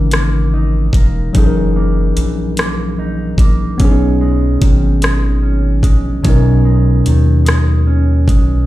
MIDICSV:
0, 0, Header, 1, 5, 480
1, 0, Start_track
1, 0, Tempo, 816327
1, 791, Time_signature, 6, 3, 24, 8
1, 5094, End_track
2, 0, Start_track
2, 0, Title_t, "Tine electric piano"
2, 0, Program_c, 0, 4
2, 0, Control_c, 0, 64, 127
2, 0, Note_on_c, 0, 49, 60
2, 0, Note_on_c, 0, 52, 57
2, 0, Note_on_c, 0, 56, 47
2, 0, Note_on_c, 0, 63, 59
2, 0, Note_on_c, 0, 70, 73
2, 764, Note_off_c, 0, 49, 0
2, 769, Note_off_c, 0, 56, 0
2, 774, Note_off_c, 0, 63, 0
2, 779, Note_off_c, 0, 52, 0
2, 782, Note_on_c, 0, 54, 63
2, 784, Note_off_c, 0, 70, 0
2, 789, Note_on_c, 0, 61, 52
2, 798, Note_on_c, 0, 63, 51
2, 799, Control_c, 0, 64, 0
2, 805, Note_on_c, 0, 52, 57
2, 813, Note_on_c, 0, 68, 57
2, 821, Note_on_c, 0, 69, 59
2, 844, Note_off_c, 0, 69, 0
2, 860, Note_on_c, 0, 70, 64
2, 896, Control_c, 0, 64, 127
2, 2203, Note_off_c, 0, 54, 0
2, 2207, Note_off_c, 0, 61, 0
2, 2211, Note_off_c, 0, 63, 0
2, 2214, Note_off_c, 0, 52, 0
2, 2218, Note_off_c, 0, 68, 0
2, 2222, Note_on_c, 0, 59, 63
2, 2231, Note_on_c, 0, 54, 58
2, 2239, Control_c, 0, 64, 0
2, 2242, Note_off_c, 0, 70, 0
2, 2242, Note_on_c, 0, 61, 62
2, 2251, Note_on_c, 0, 62, 48
2, 2263, Note_on_c, 0, 68, 69
2, 2279, Note_off_c, 0, 62, 0
2, 2292, Note_on_c, 0, 63, 56
2, 2348, Control_c, 0, 64, 127
2, 3643, Note_off_c, 0, 59, 0
2, 3647, Note_off_c, 0, 54, 0
2, 3653, Note_off_c, 0, 61, 0
2, 3662, Note_on_c, 0, 47, 65
2, 3663, Note_off_c, 0, 68, 0
2, 3671, Note_on_c, 0, 54, 54
2, 3678, Note_off_c, 0, 63, 0
2, 3682, Note_on_c, 0, 61, 55
2, 3693, Note_on_c, 0, 63, 56
2, 3701, Note_on_c, 0, 70, 67
2, 5083, Note_off_c, 0, 47, 0
2, 5088, Note_off_c, 0, 54, 0
2, 5093, Note_off_c, 0, 61, 0
2, 5094, Note_off_c, 0, 63, 0
2, 5094, Note_off_c, 0, 70, 0
2, 5094, End_track
3, 0, Start_track
3, 0, Title_t, "Clean electric guitar"
3, 0, Program_c, 1, 27
3, 0, Note_on_c, 1, 49, 73
3, 0, Note_on_c, 1, 52, 48
3, 0, Note_on_c, 1, 58, 53
3, 0, Note_on_c, 1, 63, 53
3, 72, Note_off_c, 1, 58, 0
3, 75, Note_on_c, 1, 58, 53
3, 313, Note_off_c, 1, 63, 0
3, 315, Note_on_c, 1, 63, 57
3, 556, Note_off_c, 1, 58, 0
3, 559, Note_on_c, 1, 58, 50
3, 791, Note_off_c, 1, 49, 0
3, 795, Note_on_c, 1, 42, 67
3, 799, Note_off_c, 1, 63, 0
3, 801, Note_on_c, 1, 63, 58
3, 1032, Note_off_c, 1, 58, 0
3, 1035, Note_on_c, 1, 58, 55
3, 1052, Note_off_c, 1, 52, 0
3, 1277, Note_on_c, 1, 52, 50
3, 1513, Note_off_c, 1, 58, 0
3, 1519, Note_on_c, 1, 58, 56
3, 1755, Note_off_c, 1, 63, 0
3, 1757, Note_on_c, 1, 63, 57
3, 1992, Note_off_c, 1, 58, 0
3, 1999, Note_on_c, 1, 58, 53
3, 2233, Note_off_c, 1, 42, 0
3, 2238, Note_off_c, 1, 63, 0
3, 2238, Note_on_c, 1, 47, 65
3, 2240, Note_on_c, 1, 61, 62
3, 2282, Note_off_c, 1, 52, 0
3, 2283, Note_off_c, 1, 58, 0
3, 2475, Note_on_c, 1, 56, 54
3, 2713, Note_on_c, 1, 51, 54
3, 2950, Note_off_c, 1, 56, 0
3, 2953, Note_on_c, 1, 56, 50
3, 3188, Note_off_c, 1, 61, 0
3, 3191, Note_on_c, 1, 61, 55
3, 3428, Note_off_c, 1, 56, 0
3, 3431, Note_on_c, 1, 56, 55
3, 3659, Note_off_c, 1, 47, 0
3, 3664, Note_off_c, 1, 61, 0
3, 3665, Note_on_c, 1, 47, 74
3, 3667, Note_on_c, 1, 61, 60
3, 3908, Note_off_c, 1, 56, 0
3, 3910, Note_on_c, 1, 56, 55
3, 4153, Note_off_c, 1, 51, 0
3, 4155, Note_on_c, 1, 51, 55
3, 4380, Note_off_c, 1, 56, 0
3, 4383, Note_on_c, 1, 56, 54
3, 4626, Note_off_c, 1, 61, 0
3, 4629, Note_on_c, 1, 61, 53
3, 4871, Note_off_c, 1, 56, 0
3, 4873, Note_on_c, 1, 56, 52
3, 5094, Note_off_c, 1, 47, 0
3, 5094, Note_off_c, 1, 51, 0
3, 5094, Note_off_c, 1, 56, 0
3, 5094, Note_off_c, 1, 61, 0
3, 5094, End_track
4, 0, Start_track
4, 0, Title_t, "Analog synth bass"
4, 0, Program_c, 2, 38
4, 0, Note_on_c, 2, 32, 85
4, 530, Note_off_c, 2, 32, 0
4, 551, Note_on_c, 2, 28, 81
4, 768, Note_off_c, 2, 28, 0
4, 796, Note_on_c, 2, 30, 82
4, 1250, Note_off_c, 2, 30, 0
4, 1277, Note_on_c, 2, 34, 92
4, 1970, Note_off_c, 2, 34, 0
4, 1993, Note_on_c, 2, 34, 75
4, 2209, Note_off_c, 2, 34, 0
4, 2237, Note_on_c, 2, 35, 94
4, 2690, Note_off_c, 2, 35, 0
4, 2718, Note_on_c, 2, 32, 90
4, 3431, Note_on_c, 2, 34, 90
4, 3440, Note_off_c, 2, 32, 0
4, 3647, Note_off_c, 2, 34, 0
4, 3678, Note_on_c, 2, 35, 86
4, 4131, Note_off_c, 2, 35, 0
4, 4157, Note_on_c, 2, 39, 89
4, 4871, Note_on_c, 2, 35, 89
4, 4880, Note_off_c, 2, 39, 0
4, 5088, Note_off_c, 2, 35, 0
4, 5094, End_track
5, 0, Start_track
5, 0, Title_t, "Drums"
5, 67, Note_on_c, 9, 42, 66
5, 79, Note_on_c, 9, 37, 111
5, 126, Note_off_c, 9, 42, 0
5, 138, Note_off_c, 9, 37, 0
5, 546, Note_on_c, 9, 36, 85
5, 555, Note_on_c, 9, 42, 69
5, 605, Note_off_c, 9, 36, 0
5, 613, Note_off_c, 9, 42, 0
5, 792, Note_on_c, 9, 42, 62
5, 793, Note_on_c, 9, 36, 87
5, 851, Note_off_c, 9, 42, 0
5, 852, Note_off_c, 9, 36, 0
5, 1274, Note_on_c, 9, 42, 63
5, 1333, Note_off_c, 9, 42, 0
5, 1512, Note_on_c, 9, 42, 62
5, 1524, Note_on_c, 9, 37, 103
5, 1570, Note_off_c, 9, 42, 0
5, 1583, Note_off_c, 9, 37, 0
5, 1987, Note_on_c, 9, 36, 82
5, 1994, Note_on_c, 9, 42, 68
5, 2046, Note_off_c, 9, 36, 0
5, 2053, Note_off_c, 9, 42, 0
5, 2232, Note_on_c, 9, 42, 56
5, 2234, Note_on_c, 9, 36, 87
5, 2291, Note_off_c, 9, 42, 0
5, 2293, Note_off_c, 9, 36, 0
5, 2714, Note_on_c, 9, 36, 89
5, 2714, Note_on_c, 9, 42, 65
5, 2773, Note_off_c, 9, 36, 0
5, 2773, Note_off_c, 9, 42, 0
5, 2952, Note_on_c, 9, 42, 69
5, 2964, Note_on_c, 9, 37, 104
5, 3010, Note_off_c, 9, 42, 0
5, 3023, Note_off_c, 9, 37, 0
5, 3428, Note_on_c, 9, 36, 81
5, 3433, Note_on_c, 9, 42, 62
5, 3486, Note_off_c, 9, 36, 0
5, 3492, Note_off_c, 9, 42, 0
5, 3672, Note_on_c, 9, 42, 62
5, 3674, Note_on_c, 9, 36, 95
5, 3731, Note_off_c, 9, 42, 0
5, 3733, Note_off_c, 9, 36, 0
5, 4151, Note_on_c, 9, 42, 70
5, 4209, Note_off_c, 9, 42, 0
5, 4389, Note_on_c, 9, 42, 66
5, 4401, Note_on_c, 9, 37, 106
5, 4448, Note_off_c, 9, 42, 0
5, 4460, Note_off_c, 9, 37, 0
5, 4867, Note_on_c, 9, 36, 79
5, 4874, Note_on_c, 9, 42, 65
5, 4925, Note_off_c, 9, 36, 0
5, 4933, Note_off_c, 9, 42, 0
5, 5094, End_track
0, 0, End_of_file